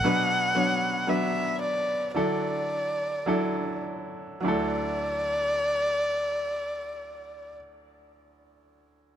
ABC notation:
X:1
M:4/4
L:1/8
Q:1/4=50
K:D
V:1 name="Erhu"
f2 e d d3 z | d8 |]
V:2 name="Grand piano"
[F,B,DB] [F,B,Dc] [F,B,DB]2 [F,DEA]2 [F,DEA]2 | [F,DEA]8 |]
V:3 name="Grand piano" clef=bass
B,,3 z D,3 z | D,,8 |]